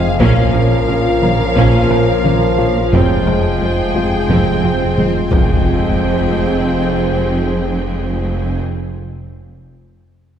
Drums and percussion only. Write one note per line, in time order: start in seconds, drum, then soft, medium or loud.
0.20 taiko loud
1.23 taiko mid medium
1.57 taiko medium
1.91 taiko rim soft
2.25 taiko mid medium
2.93 taiko loud
3.27 taiko rim soft
4.30 taiko medium
4.98 taiko mid medium
5.32 taiko loud